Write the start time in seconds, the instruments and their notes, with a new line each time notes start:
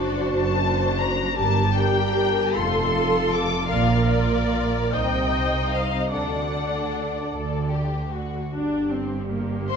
Already playing: double bass section F#1, cello section F#2, violin section D4 C5 D5, viola section F#4
0.28 double bass section F#1, cello section F#2, violin section A5
0.65 violin section D4 C5
1.01 violin section A#5
1.36 double bass section G1, cello section G2, violin section D4 A#4 A5, viola section G4
1.75 violin section D4 A#4 G5
2.55 double bass section F1, cello section F2, violin section F4 A4 C6, viola section A4
2.95 violin section F4 A4
3.32 violin section D6
3.68 double bass section A#1, cello section A#2, violin section F4 D5 F5, viola section A#4
4.08 violin section F4 D5
4.92 double bass section C2, cello section C3, violin section D#4 C5 G5, viola section D#5
5.32 violin section D#4 C5
5.72 violin section F5
6.12 double bass section D2, cello section D3, violin section D4 A4 F#5, viola section D5
6.52 violin section D4 A4
7.32 double bass section D2, cello section D3, violin section A4
7.71 violin section G4
8.13 violin section F#4
8.54 double bass section G1, cello section G2, viola section D4 G4
8.93 viola section C4
9.31 viola section A#3
9.69 violin section C5 C6